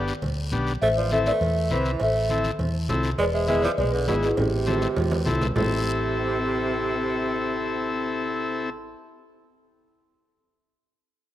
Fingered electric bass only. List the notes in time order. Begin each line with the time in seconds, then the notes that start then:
Already playing: G1
0.23 D2
0.52 B1
0.82 A1
1.41 E2
1.71 C2
2.01 A1
2.59 E2
2.89 C2
3.18 E1
3.78 B1
4.07 G#1
4.38 A1
4.97 E2
5.26 C2
5.56 A1